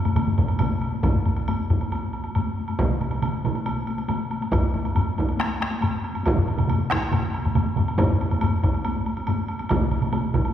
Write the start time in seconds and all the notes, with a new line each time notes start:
0.05 taiko low-mid, taiko mid, taiko high, high woodblock
0.16 taiko low-mid, taiko mid, taiko high, high woodblock
0.27 taiko low-mid, taiko mid
0.38 taiko, taiko low-mid, taiko mid, high woodblock
0.48 taiko high, high woodblock
0.59 taiko, taiko low-mid, taiko mid, taiko high, high woodblock
0.82 high woodblock
0.92 taiko high
1.03 taiko, taiko low-mid, taiko high, high woodblock
1.16 taiko low-mid
1.26 taiko low-mid, taiko high, high woodblock
1.37 taiko low-mid, taiko high, high woodblock
1.48 taiko low-mid, taiko high, high woodblock
1.70 taiko, taiko low-mid, taiko high, high woodblock
1.81 taiko high, high woodblock
1.92 taiko high, high woodblock
2.13 taiko high, high woodblock
2.24 taiko high, high woodblock
2.35 taiko low-mid, taiko high, high woodblock
2.58 taiko high
2.68 taiko high, high woodblock
2.79 taiko, taiko mid, taiko high, high woodblock
2.90 taiko mid
3.01 taiko mid, taiko high, high woodblock
3.11 taiko mid, taiko high, high woodblock
3.22 taiko mid, taiko high, high woodblock
3.44 taiko, taiko mid, taiko high, high woodblock
3.54 taiko high, high woodblock
3.66 taiko high, high woodblock
3.87 taiko high, high woodblock
3.98 taiko high, high woodblock
4.08 taiko mid, taiko high, high woodblock
4.31 taiko high, high woodblock
4.41 taiko high, high woodblock
4.52 taiko, taiko low-mid, taiko high, high woodblock
4.73 taiko low-mid, taiko high, high woodblock
4.84 taiko high, high woodblock
4.95 taiko low-mid, taiko high, high woodblock
5.17 taiko, taiko high, high woodblock
5.27 taiko high, high woodblock
5.37 taiko rim, taiko high, high woodblock
5.60 taiko rim, taiko high, high woodblock
5.71 taiko high, high woodblock
5.81 taiko low-mid, taiko high, high woodblock
6.04 taiko high, high woodblock
6.14 taiko high, high woodblock
6.23 taiko, taiko high, high woodblock
6.36 taiko low-mid, taiko mid
6.46 taiko high, high woodblock
6.57 taiko low-mid, taiko mid, taiko high, high woodblock
6.67 taiko low-mid, taiko mid, taiko high, high woodblock
6.91 taiko rim, taiko, taiko high, high woodblock
7.01 taiko high, high woodblock
7.12 taiko low-mid, taiko mid, taiko high, high woodblock
7.34 taiko high, high woodblock
7.44 taiko low-mid, taiko mid, taiko high, high woodblock
7.55 taiko low-mid, taiko mid, taiko high, high woodblock
7.76 taiko low-mid, taiko mid, taiko high, high woodblock
7.88 taiko high, high woodblock
7.98 taiko, taiko low-mid, taiko high, high woodblock
8.12 taiko low-mid
8.20 taiko low-mid, taiko high, high woodblock
8.31 taiko low-mid, taiko high, high woodblock
8.41 taiko low-mid, taiko high, high woodblock
8.63 taiko, taiko low-mid, taiko high, high woodblock
8.74 taiko high, high woodblock
8.85 taiko high, high woodblock
9.06 taiko high, high woodblock
9.17 taiko high, high woodblock
9.27 taiko low-mid, taiko high, high woodblock
9.48 taiko high, high woodblock
9.59 taiko high, high woodblock
9.69 taiko, taiko mid, taiko high, high woodblock
9.81 taiko mid
9.91 taiko mid, high woodblock
10.02 taiko mid, taiko high, high woodblock
10.12 taiko mid, taiko high, high woodblock
10.34 taiko, taiko mid, taiko high, high woodblock
10.45 taiko high, high woodblock